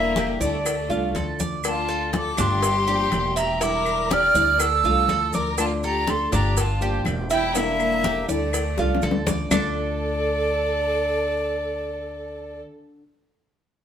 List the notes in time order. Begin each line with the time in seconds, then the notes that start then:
Already playing: E1 D3 G3 A#3 D4 E4 E5
0.16 D3 G3 E4 G4, cowbell, high conga, maracas
0.40 D2 G3 A3 D4 E4 D5, high conga, maracas
0.65 muted nylon-string guitar stroke, cowbell, high conga, claves, maracas
0.89 C2 A3 D4 F4, high conga, maracas
1.14 D2 D3 A3 D4 F4 A4, cowbell, high conga, maracas
1.39 D5, high conga, maracas
1.64 D3 A3 D4 F4 A5, cowbell, high conga, claves, maracas
1.89 A4, high conga, maracas
2.13 D3 A3 D4 F4 A4 D6, cowbell, high conga, maracas
2.37 G1 A3 D4 F4 G4 C6, cowbell, high conga, low conga, claves, maracas
2.62 muted nylon-string guitar stroke, cowbell, high conga, maracas
2.87 F3 A#3 D4 G4, high conga, maracas
3.12 E1 F3 A#3 D4 G4, cowbell, high conga, claves, maracas
3.36 G4 E5 A#5, cowbell, maracas
3.61 D3 G3 D4 E4 A#4 D6, cowbell, high conga, maracas
3.86 high conga, claves, maracas
4.10 D3 G3 D4 E4 G4 D5 F6, cowbell, high conga, maracas
4.34 D2 G3 D4 E4 D5, high conga, maracas
4.59 A4 E6, muted nylon-string guitar stroke, cowbell, high conga, claves, maracas
4.84 C2 A3 D4 F4, high conga, maracas
5.08 D2 D3 A3 D4 F4 A4, cowbell, high conga, maracas
5.33 A#4 D5 D6, high conga, maracas
5.57 D3 A3 D4 F4 A5, cowbell, high conga, claves, maracas
5.83 G4 A4 A#5, high conga, maracas
6.07 D3 A3 D4 F4 A4 C6, cowbell, high conga, maracas
6.32 G1 A3 D4 F4 G4 A#5, cowbell, high conga, low conga, claves, maracas
6.57 F4 A5, muted nylon-string guitar stroke, cowbell, high conga, low conga, maracas
6.81 F3 A#3 D4 G4, high conga, maracas
7.05 E1 F3 A#3 D4 G4, cowbell, high conga, claves, maracas
7.30 E4 E5 G5, cowbell, maracas
7.54 D3 G3 A#3 D4 E4 E5, cowbell, high conga, maracas
7.80 high conga, claves, maracas
8.03 D3 G3 D4 E4 G4, cowbell, high conga, maracas
8.28 D2 G3 A3 D4 E4 D5, high conga, maracas
8.53 muted nylon-string guitar stroke, cowbell, high conga, claves, maracas
8.78 C2 A3 D4 F4, high bongo, high conga, maracas
8.95 low bongo
9.02 D2 D3 A3 D4 F4 A4, cowbell, high conga, maracas
9.11 low bongo
9.27 D5, low bongo, high conga, maracas
9.51 D2 D3 A3 D4 F4 A4 D5, low bongo, low conga, claves, maracas